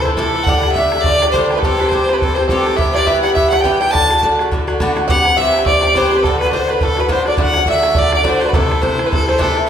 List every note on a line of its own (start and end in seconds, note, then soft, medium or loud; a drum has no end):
0.00 0.20 A4 medium
0.00 0.15 C5 medium
0.05 0.17 E3 soft
0.05 0.17 A3 soft
0.05 0.17 E4 medium
0.05 0.18 C5 medium
0.05 bodhran medium
0.16 0.35 C3 medium
0.16 0.35 E3 medium
0.16 0.35 A3 medium
0.16 0.34 E4 loud
0.16 0.45 A4 medium
0.16 bodhran medium
0.20 0.49 A4 medium
0.20 0.53 A4 medium
0.35 0.47 E3 soft
0.35 0.48 A3 medium
0.35 0.48 E4 medium
0.43 0.64 A2 medium
0.43 0.72 F#5 loud
0.43 bodhran loud
0.47 0.64 D3 medium
0.47 0.65 A3 medium
0.47 0.64 G4 loud
0.47 0.75 F#5 medium
0.52 0.79 F#5 medium
0.63 0.75 D3 soft
0.63 0.76 A3 soft
0.63 0.76 G4 medium
0.63 bodhran medium
0.72 0.93 A2 medium
0.72 1.02 E5 loud
0.72 bodhran medium
0.76 0.93 D3 medium
0.76 0.93 A3 medium
0.76 0.92 G4 medium
0.76 1.10 E5 medium
0.76 1.04 E5 medium
0.92 1.05 D3 soft
0.92 1.06 A3 medium
0.92 1.05 G4 soft
0.92 bodhran medium
1.01 1.31 D5 loud
1.01 bodhran medium
1.06 1.22 A2 medium
1.06 1.22 D3 medium
1.06 1.22 A3 medium
1.06 1.21 G4 medium
1.06 1.22 D5 medium
1.06 1.24 D5 medium
1.22 1.34 D3 soft
1.22 1.35 A3 medium
1.22 1.34 G4 soft
1.22 1.35 D5 medium
1.22 1.39 D5 medium
1.22 bodhran medium
1.31 1.51 A2 medium
1.31 1.51 D3 medium
1.31 1.53 C5 medium
1.31 1.54 C5 medium
1.31 bodhran medium
1.36 1.51 A3 loud
1.36 1.50 G4 medium
1.36 1.60 C5 medium
1.50 1.64 D3 soft
1.50 1.64 A3 medium
1.50 1.63 G4 medium
1.50 1.60 B4 medium
1.50 bodhran medium
1.57 1.90 A4 loud
1.57 1.63 B4 medium
1.57 1.66 B4 medium
1.57 1.59 C5 medium
1.63 1.80 G2 medium
1.63 1.80 E3 medium
1.63 1.80 C4 medium
1.63 1.79 G4 medium
1.63 1.79 A4 medium
1.63 1.91 A4 medium
1.63 bodhran medium
1.80 1.91 E3 soft
1.80 1.92 C4 medium
1.80 1.92 G4 medium
1.80 1.91 B4 medium
1.80 bodhran medium
1.86 2.15 C5 loud
1.86 bodhran medium
1.91 2.09 G2 medium
1.91 2.09 E3 medium
1.91 2.09 C4 medium
1.91 2.08 G4 medium
1.91 2.15 C5 medium
1.91 2.16 C5 medium
1.91 bodhran medium
2.09 2.21 E3 soft
2.09 2.21 C4 soft
2.09 2.21 G4 medium
2.09 2.18 B4 medium
2.09 bodhran medium
2.13 2.22 B4 medium
2.13 2.20 B4 medium
2.18 2.38 G2 soft
2.18 2.38 E3 medium
2.18 2.35 A4 medium
2.18 2.36 A4 loud
2.18 2.36 A4 medium
2.18 bodhran medium
2.23 2.38 C4 medium
2.23 2.37 G4 medium
2.35 2.50 G4 medium
2.35 2.48 C5 medium
2.35 2.49 C5 medium
2.35 2.54 C5 medium
2.35 bodhran medium
2.40 2.50 E3 soft
2.40 2.50 C4 soft
2.48 2.66 G2 medium
2.48 2.67 E3 medium
2.48 2.66 C4 medium
2.48 2.75 A4 medium
2.48 2.78 A4 medium
2.48 bodhran medium
2.52 2.65 G4 loud
2.52 2.83 A4 medium
2.66 2.76 E3 soft
2.66 2.78 C4 medium
2.66 2.77 G4 medium
2.66 bodhran medium
2.76 2.94 G2 medium
2.76 2.94 E3 medium
2.76 2.95 B3 medium
2.76 2.94 G4 medium
2.76 2.90 E5 loud
2.76 2.94 E5 medium
2.76 bodhran medium
2.82 3.01 E5 medium
2.92 3.06 B3 soft
2.92 3.07 G4 medium
2.92 2.97 C5 medium
2.92 3.06 D5 loud
2.92 3.08 D5 loud
2.92 bodhran medium
2.96 3.05 E3 soft
2.96 3.11 D5 medium
3.06 3.23 G2 medium
3.06 3.23 E3 medium
3.06 3.23 B3 medium
3.06 3.22 G4 medium
3.06 3.22 E5 loud
3.06 3.22 E5 medium
3.06 3.24 E5 medium
3.06 bodhran medium
3.22 3.35 E3 soft
3.22 3.35 B3 medium
3.22 3.36 G4 medium
3.22 3.33 F#5 medium
3.22 3.35 F#5 medium
3.22 3.39 F#5 medium
3.22 bodhran medium
3.34 3.52 G2 medium
3.34 3.52 E3 medium
3.34 3.52 B3 medium
3.34 3.51 G4 medium
3.34 3.49 E5 loud
3.34 3.51 E5 medium
3.34 3.56 E5 medium
3.34 bodhran medium
3.50 3.63 E3 soft
3.50 3.64 B3 soft
3.50 3.64 G4 soft
3.50 3.62 F#5 medium
3.50 3.60 F#5 loud
3.50 bodhran medium
3.54 3.67 F#5 medium
3.60 3.78 G5 medium
3.60 3.80 G5 medium
3.60 3.63 A5 medium
3.64 3.81 G2 medium
3.64 3.81 E3 medium
3.64 3.80 B3 medium
3.64 3.79 G4 loud
3.64 3.81 G5 medium
3.64 bodhran medium
3.79 3.93 E3 medium
3.79 3.93 B3 soft
3.79 3.93 G4 medium
3.79 3.92 G5 loud
3.79 3.92 G5 medium
3.79 3.94 G5 medium
3.79 bodhran medium
3.91 4.10 A2 medium
3.91 4.10 D3 medium
3.91 4.09 A3 medium
3.91 4.08 F#4 medium
3.91 4.21 A5 loud
3.91 4.22 A5 loud
3.91 4.20 A5 medium
3.95 bodhran medium
4.09 4.22 D3 soft
4.09 4.22 A3 soft
4.09 4.22 F#4 medium
4.09 bodhran medium
4.23 4.39 A2 medium
4.23 4.39 D3 medium
4.23 4.39 A3 medium
4.23 4.39 F#4 medium
4.23 bodhran medium
4.39 4.51 D3 soft
4.39 4.52 A3 medium
4.39 4.52 F#4 medium
4.39 bodhran medium
4.51 4.68 A2 medium
4.51 4.68 D3 medium
4.51 4.68 A3 medium
4.51 4.66 F#4 medium
4.51 bodhran medium
4.67 4.80 D3 medium
4.67 4.80 A3 medium
4.67 4.80 F#4 medium
4.67 bodhran medium
4.80 4.97 A2 loud
4.80 4.97 D3 medium
4.80 4.95 A3 loud
4.80 4.95 F#4 loud
4.80 bodhran loud
4.96 5.08 D3 soft
4.96 5.09 A3 medium
4.96 5.08 F#4 medium
4.96 bodhran medium
5.08 5.25 G2 medium
5.08 5.25 E3 medium
5.08 5.25 C4 medium
5.08 5.24 G4 medium
5.08 5.35 F#5 loud
5.08 5.39 F#5 loud
5.08 bodhran loud
5.25 5.37 E3 soft
5.25 5.38 C4 medium
5.25 5.38 G4 medium
5.25 bodhran medium
5.37 5.54 G2 medium
5.37 5.55 E3 medium
5.37 5.54 C4 medium
5.37 5.53 G4 medium
5.37 5.64 E5 medium
5.37 5.66 E5 loud
5.37 5.70 E5 medium
5.37 bodhran medium
5.54 5.66 E3 soft
5.54 5.67 C4 soft
5.54 5.66 G4 medium
5.54 bodhran medium
5.66 5.83 G2 medium
5.66 5.83 E3 medium
5.66 5.83 C4 medium
5.66 5.82 G4 medium
5.66 5.99 D5 loud
5.66 5.80 D5 medium
5.66 5.98 D5 medium
5.66 bodhran medium
5.81 5.95 E3 soft
5.81 5.95 C4 medium
5.81 5.95 G4 medium
5.81 5.93 D5 medium
5.81 bodhran medium
5.95 6.12 G2 medium
5.95 6.12 E3 loud
5.95 6.12 C4 medium
5.95 6.11 G4 loud
5.95 6.16 C5 medium
5.95 6.20 C5 medium
5.95 6.20 C5 loud
5.95 bodhran medium
6.12 6.25 E3 soft
6.12 6.25 C4 medium
6.12 6.24 G4 medium
6.12 bodhran medium
6.16 6.22 B4 medium
6.16 6.25 B4 medium
6.16 6.27 B4 medium
6.23 6.41 A2 medium
6.23 6.41 D3 medium
6.23 6.41 A3 medium
6.23 6.40 F#4 medium
6.23 6.39 A4 medium
6.23 6.50 A4 medium
6.23 6.41 A4 medium
6.23 bodhran medium
6.40 6.52 D3 soft
6.40 6.53 A3 soft
6.40 6.53 F#4 soft
6.40 6.51 B4 medium
6.40 6.56 B4 medium
6.40 bodhran medium
6.47 bodhran medium
6.51 6.69 A2 medium
6.51 6.69 D3 medium
6.51 6.69 A3 medium
6.51 6.68 F#4 medium
6.51 6.71 C5 loud
6.51 6.68 C5 medium
6.51 6.74 C5 medium
6.51 6.53 D5 soft
6.51 bodhran medium
6.68 6.80 D3 medium
6.68 6.81 A3 soft
6.68 6.81 F#4 medium
6.68 6.81 B4 medium
6.68 6.85 B4 medium
6.68 bodhran medium
6.72 6.85 B4 medium
6.81 6.98 A2 medium
6.81 6.98 D3 medium
6.81 6.97 A3 medium
6.81 6.96 F#4 medium
6.81 6.98 A4 medium
6.81 7.01 A4 loud
6.81 7.00 A4 medium
6.81 bodhran medium
6.97 7.08 D3 soft
6.97 7.08 A3 medium
6.97 7.08 F#4 medium
6.97 7.14 B4 medium
6.97 7.11 B4 medium
6.97 bodhran medium
7.09 7.26 A2 medium
7.09 7.26 D3 medium
7.09 7.26 A3 loud
7.09 7.24 F#4 medium
7.09 7.26 C5 medium
7.09 7.28 C5 medium
7.09 bodhran loud
7.13 7.29 C5 medium
7.25 7.37 D3 soft
7.25 7.37 A3 medium
7.25 7.37 F#4 medium
7.25 7.39 D5 medium
7.25 bodhran medium
7.37 7.54 A2 medium
7.37 7.55 D3 medium
7.37 7.54 A3 medium
7.37 7.53 F#4 medium
7.37 7.55 F#5 medium
7.37 bodhran medium
7.41 7.67 F#5 loud
7.41 7.71 F#5 medium
7.54 7.66 D3 soft
7.54 7.66 A3 medium
7.54 7.67 F#4 medium
7.54 7.69 F#5 medium
7.54 bodhran medium
7.66 7.84 A2 medium
7.66 7.82 D3 medium
7.66 7.81 A3 medium
7.66 7.81 F#4 medium
7.66 8.00 E5 loud
7.66 bodhran medium
7.70 7.98 E5 medium
7.70 7.96 E5 medium
7.82 7.94 D3 soft
7.82 7.95 A3 medium
7.82 7.95 F#4 medium
7.82 bodhran medium
7.95 8.12 A2 medium
7.95 8.12 D3 medium
7.95 8.12 A3 medium
7.95 8.11 F#4 medium
7.95 8.12 D5 medium
7.95 8.14 D5 loud
7.95 bodhran loud
8.12 8.23 D3 soft
8.12 8.23 A3 soft
8.12 8.23 F#4 soft
8.12 8.27 D5 medium
8.12 8.26 D5 medium
8.12 8.31 D5 medium
8.12 bodhran medium
8.23 8.41 A2 medium
8.23 8.41 D3 loud
8.23 8.40 A3 loud
8.23 8.40 F#4 loud
8.23 8.47 C5 medium
8.23 bodhran loud
8.29 8.51 C5 medium
8.41 8.54 D3 soft
8.41 8.54 A3 medium
8.41 8.54 F#4 medium
8.41 bodhran medium
8.46 8.56 B4 medium
8.46 8.54 B4 medium
8.46 8.56 B4 medium
8.53 8.71 C3 medium
8.53 8.71 E3 medium
8.53 8.70 A3 medium
8.53 8.68 E4 medium
8.53 8.81 A4 medium
8.53 8.85 A4 medium
8.53 8.84 A4 medium
8.53 bodhran loud
8.70 8.81 E3 soft
8.70 8.82 A3 medium
8.70 8.82 E4 medium
8.70 bodhran medium
8.82 8.99 C3 medium
8.82 8.98 E3 medium
8.82 8.98 A3 medium
8.82 8.97 E4 medium
8.82 9.05 C5 loud
8.82 9.04 C5 medium
8.82 9.08 C5 medium
8.82 bodhran medium
8.98 9.10 E3 soft
8.98 9.11 A3 soft
8.98 9.11 E4 medium
8.98 bodhran medium
9.05 9.12 B4 medium
9.05 9.11 B4 medium
9.05 9.08 C5 medium
9.10 9.28 C3 medium
9.10 9.27 E3 soft
9.10 9.27 A3 medium
9.10 9.25 E4 medium
9.10 9.30 A4 medium
9.10 9.30 A4 loud
9.10 9.28 A4 medium
9.10 bodhran medium
9.27 9.37 E3 soft
9.27 9.38 A3 medium
9.27 9.38 E4 medium
9.27 9.43 C5 medium
9.27 9.40 C5 medium
9.27 bodhran medium
9.38 9.56 C3 medium
9.38 9.55 E3 medium
9.38 9.55 A3 loud
9.38 9.54 E4 loud
9.38 9.59 A4 medium
9.38 9.68 A4 medium
9.38 9.69 A4 medium
9.38 bodhran loud
9.55 9.67 E3 soft
9.55 9.67 A3 soft
9.55 9.68 E4 medium
9.55 9.69 E5 medium
9.55 bodhran medium